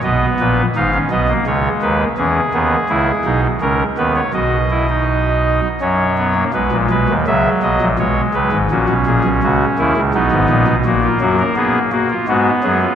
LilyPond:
<<
  \new Staff \with { instrumentName = "Pipe organ" } { \time 3/4 \key b \major \tempo 4 = 84 dis''8 b'8 eis''8 dis''8 cis''8 b'8 | gis'2 ais'8 b'16 cis''16 | dis''2 cis''4 | b'8 b'8 e''8 dis''8 cis''8 b'8 |
fis'8 gis'8 fis'8 e'8 dis'4 | fis'16 eis'16 fis'16 ais'16 gis'8 fis'16 eis'16 fis'8 gis'16 eis'16 | }
  \new Staff \with { instrumentName = "Pipe organ" } { \clef bass \time 3/4 \key b \major << { b4 dis'16 cis'16 b16 ais16 gis4 | cis'8 b8 e'8 dis'8 cis'8 b8 | fis'8 e'16 dis'4~ dis'16 cis'8 b16 ais16 | gis4 fis4 gis4 |
cis'2 b4 | ais2 b4 | } \\ { <b,, b,>8 <ais,, ais,>8 <gis,, gis,>8 <b,, b,>8 <cis, cis>8 <dis, dis>8 | <e, e>8 <dis, dis>8 <cis, cis>8 <b,, b,>8 <cis, cis>8 <dis, dis>8 | <b,, b,>2 <fis, fis>4 | <b,, b,>16 <ais,, ais,>16 <b,, b,>16 <dis, dis>16 <cis, cis>8 <b,, b,>16 <ais,, ais,>16 <b,, b,>8 <cis, cis>16 <gis,, gis,>16 |
<ais,, ais,>16 <b,, b,>16 <ais,, ais,>16 <b,, b,>16 <cis, cis>8 <dis, dis>16 <cis, cis>16 <b,, b,>16 <gis,, gis,>16 <ais,, ais,>16 <b,, b,>16 | <ais,, ais,>8 <fis, fis>8 b8 ais8 <gis, gis>8 <fis, fis>8 | } >> }
>>